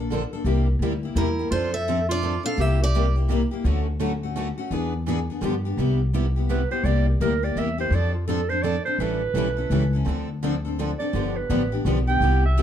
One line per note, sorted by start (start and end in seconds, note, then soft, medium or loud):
0.00 0.24 A#1 loud
0.00 0.11 A#3 soft
0.00 0.10 D4 soft
0.12 0.21 D3 medium
0.12 0.21 F3 medium
0.12 0.22 A#3 medium
0.12 0.22 D4 medium
0.12 0.22 A4 medium
0.33 0.45 A#3 soft
0.33 0.46 D4 medium
0.33 0.45 A4 medium
0.44 0.73 C2 medium
0.44 0.66 C3 medium
0.44 0.66 G3 medium
0.44 0.66 A#3 medium
0.44 0.66 E4 medium
0.44 0.66 G4 medium
0.79 1.10 D2 medium
0.79 0.92 C3 medium
0.79 0.92 G3 medium
0.79 0.92 A#3 medium
0.79 0.92 E4 medium
0.79 0.92 G4 medium
1.03 1.17 A#3 soft
1.03 1.17 E4 soft
1.03 1.16 G4 soft
1.15 1.46 E2 medium
1.15 1.27 C3 medium
1.15 1.27 G3 medium
1.15 1.28 A#3 medium
1.15 1.49 E4 medium
1.15 1.28 E4 medium
1.15 1.28 G4 medium
1.15 1.51 A#4 medium
1.39 1.52 A#3 soft
1.39 1.52 E4 soft
1.39 1.51 G4 medium
1.50 2.36 F2 medium
1.50 1.72 F3 medium
1.50 1.72 C4 medium
1.50 1.73 D4 medium
1.50 1.71 F4 medium
1.50 1.73 A4 medium
1.50 1.72 C5 medium
1.74 2.06 A4 medium
1.74 2.06 E5 medium
1.88 1.98 F3 medium
1.88 1.98 C4 medium
1.88 1.98 D4 medium
1.88 1.99 A4 loud
2.09 2.21 C4 soft
2.09 2.22 D4 soft
2.09 2.42 F4 medium
2.09 2.22 A4 soft
2.09 2.45 D5 loud
2.22 2.33 F3 medium
2.22 2.33 C4 medium
2.22 2.34 D4 medium
2.22 2.33 A4 medium
2.43 2.57 C4 soft
2.43 2.57 D4 soft
2.43 2.57 A4 medium
2.43 2.62 A4 medium
2.43 2.61 F5 loud
2.57 3.43 C2 medium
2.57 2.78 C3 medium
2.57 2.78 G3 medium
2.57 2.78 A#3 medium
2.57 2.79 E4 medium
2.57 2.79 G4 medium
2.57 2.81 G4 medium
2.61 2.82 E5 medium
2.82 3.14 G4 medium
2.82 3.15 D5 medium
2.95 3.05 C3 medium
2.95 3.05 G3 medium
2.95 3.05 A#3 loud
2.95 3.05 E4 medium
2.95 3.06 G4 medium
3.16 3.30 A#3 soft
3.16 3.29 E4 soft
3.16 3.28 G4 soft
3.30 3.40 C3 medium
3.30 3.41 G3 medium
3.30 3.41 A#3 medium
3.30 3.41 E4 medium
3.30 3.41 G4 loud
3.51 3.65 A#3 medium
3.51 3.65 E4 medium
3.51 3.64 G4 medium
3.64 4.50 D2 medium
3.64 3.85 D3 medium
3.64 3.86 F#3 medium
3.64 3.86 A3 medium
3.64 3.86 C#4 medium
3.64 3.86 F#4 medium
3.64 3.86 A4 medium
4.00 4.11 D3 medium
4.00 4.11 F#3 medium
4.00 4.11 A3 medium
4.00 4.11 C#4 medium
4.00 4.12 F#4 medium
4.00 4.11 A4 medium
4.23 4.36 A3 soft
4.23 4.36 C#4 soft
4.23 4.36 F#4 medium
4.37 4.47 D3 medium
4.37 4.47 F#3 medium
4.37 4.47 A3 medium
4.37 4.48 C#4 medium
4.37 4.48 F#4 medium
4.37 4.47 A4 medium
4.58 4.71 A3 soft
4.58 4.71 C#4 medium
4.58 4.71 F#4 medium
4.71 5.28 E2 medium
4.71 4.92 E3 medium
4.71 4.92 B3 medium
4.71 4.92 D4 medium
4.71 4.93 G#4 medium
4.71 4.93 B4 medium
5.08 5.18 E3 medium
5.08 5.19 B3 medium
5.08 5.19 D4 loud
5.08 5.19 G#4 medium
5.08 5.18 B4 medium
5.30 5.42 B3 soft
5.30 5.43 D4 soft
5.30 5.42 G#4 medium
5.42 5.70 G2 medium
5.42 5.53 D3 medium
5.42 5.53 F3 medium
5.42 5.54 B3 medium
5.42 5.54 D4 medium
5.42 5.54 G4 loud
5.65 5.79 B3 soft
5.65 5.78 D4 medium
5.65 5.78 G4 medium
5.77 6.63 C2 medium
5.77 5.99 C3 medium
5.77 5.99 G3 medium
5.77 6.00 B3 medium
5.77 6.00 E4 medium
5.77 6.00 G4 medium
6.14 6.25 C3 medium
6.14 6.25 G3 medium
6.14 6.25 B3 medium
6.14 6.25 E4 medium
6.14 6.25 G4 medium
6.36 6.49 B3 soft
6.36 6.49 E4 medium
6.36 6.49 G4 soft
6.50 6.60 C3 medium
6.50 6.61 G3 medium
6.50 6.61 B3 medium
6.50 6.61 E4 medium
6.50 6.61 G4 medium
6.50 6.70 B4 medium
6.71 6.85 B3 soft
6.71 6.85 E4 soft
6.71 6.84 G4 medium
6.71 6.86 C5 medium
6.83 7.13 C2 medium
6.83 7.06 C3 medium
6.83 7.06 G3 medium
6.83 7.07 A#3 medium
6.83 7.07 E4 medium
6.83 7.07 G4 medium
6.83 7.07 D5 medium
7.09 7.23 G4 soft
7.20 7.51 D2 medium
7.20 7.32 C3 medium
7.20 7.32 G3 loud
7.20 7.32 A#3 loud
7.20 7.32 E4 medium
7.20 7.33 G4 loud
7.20 7.46 A#4 medium
7.43 7.56 A#3 soft
7.43 7.56 E4 soft
7.43 7.56 G4 medium
7.43 7.60 D5 medium
7.55 7.86 E2 medium
7.55 7.68 C3 medium
7.55 7.68 G3 medium
7.55 7.68 A#3 medium
7.55 7.68 E4 medium
7.55 7.69 G4 medium
7.55 7.80 E5 medium
7.78 7.92 A#3 soft
7.78 7.92 E4 medium
7.78 7.92 G4 medium
7.78 7.96 C5 medium
7.91 8.77 F2 medium
7.91 8.13 F3 medium
7.91 8.13 C4 medium
7.91 8.14 D4 medium
7.91 8.14 A4 medium
7.95 8.14 D5 loud
8.14 8.29 F4 soft
8.27 8.39 F3 medium
8.27 8.39 C4 medium
8.27 8.39 D4 medium
8.27 8.51 A4 medium
8.27 8.40 A4 loud
8.49 8.64 C4 soft
8.49 8.64 D4 medium
8.49 8.63 A4 medium
8.49 8.64 C5 medium
8.63 8.75 F3 medium
8.63 8.75 C4 medium
8.63 8.76 D4 medium
8.63 8.76 A4 medium
8.63 8.85 D5 loud
8.85 9.00 C4 soft
8.85 9.00 D4 medium
8.85 8.99 A4 medium
8.85 9.01 C5 medium
8.98 9.28 A1 medium
8.98 9.21 E3 medium
8.98 9.21 G3 medium
8.98 9.21 C#4 medium
8.98 9.21 E4 medium
8.98 9.22 A4 medium
8.98 10.07 B4 medium
9.34 9.65 B1 medium
9.34 9.47 E3 medium
9.34 9.47 G3 loud
9.34 9.48 C#4 medium
9.38 9.48 E4 loud
9.38 9.48 A4 medium
9.57 9.71 C#4 soft
9.57 9.71 E4 soft
9.57 9.70 A4 medium
9.70 10.01 C#2 medium
9.70 9.82 E3 medium
9.70 9.82 G3 medium
9.70 9.83 C#4 medium
9.70 9.83 E4 medium
9.70 9.83 A4 medium
9.93 10.08 C#4 soft
9.93 10.07 E4 soft
9.93 10.06 A4 soft
10.06 10.92 D2 medium
10.06 10.28 D3 medium
10.06 10.29 F3 medium
10.06 10.29 C4 medium
10.06 10.29 D4 medium
10.06 10.29 A4 medium
10.43 10.54 D3 medium
10.43 10.54 F3 medium
10.43 10.55 C4 loud
10.43 10.55 D4 medium
10.43 10.55 A4 medium
10.65 10.78 C4 soft
10.65 10.79 D4 medium
10.65 10.78 A4 medium
10.79 10.90 D3 medium
10.79 10.90 F3 medium
10.79 10.90 C4 medium
10.79 10.90 D4 medium
10.79 10.91 A4 medium
10.99 11.15 C4 soft
10.99 11.14 D4 soft
10.99 11.14 A4 medium
10.99 11.38 D5 medium
11.13 11.42 G1 medium
11.13 11.36 D3 medium
11.13 11.36 F3 medium
11.13 11.36 B3 medium
11.13 11.36 D4 medium
11.13 11.36 G4 medium
11.36 11.86 B4 medium
11.50 11.80 A1 medium
11.50 11.61 D3 medium
11.50 11.61 F3 medium
11.50 11.61 B3 loud
11.50 11.62 D4 medium
11.50 11.62 G4 medium
11.72 11.86 B3 soft
11.72 11.86 D4 medium
11.72 11.85 G4 medium
11.85 12.16 B1 medium
11.85 11.97 D3 medium
11.85 11.97 F3 medium
11.85 11.98 B3 medium
11.85 11.98 D4 medium
11.85 11.98 G4 medium
12.07 12.21 B3 medium
12.07 12.21 D4 medium
12.07 12.21 G4 medium
12.07 12.41 G5 loud
12.20 12.62 C2 medium
12.20 12.42 C3 medium
12.20 12.43 G3 medium
12.20 12.43 B3 medium
12.20 12.43 E4 medium
12.20 12.43 G4 medium
12.46 12.62 E5 medium
12.58 12.62 C3 medium
12.58 12.62 G3 medium
12.58 12.62 B3 medium
12.58 12.62 E4 loud
12.58 12.62 G4 loud